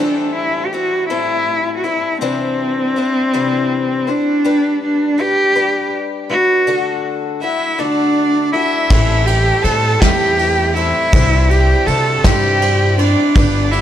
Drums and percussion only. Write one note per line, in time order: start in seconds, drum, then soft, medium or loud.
8.90 kick loud
8.90 ride medium
9.27 ride medium
9.64 ride medium
10.02 kick medium
10.02 snare loud
10.02 ride medium
10.39 ride medium
10.76 ride medium
11.13 kick loud
11.13 ride medium
11.51 ride medium
11.87 ride medium
12.24 kick medium
12.24 snare loud
12.24 ride medium
12.62 ride medium
12.99 ride medium
13.36 kick loud
13.36 ride medium
13.73 ride medium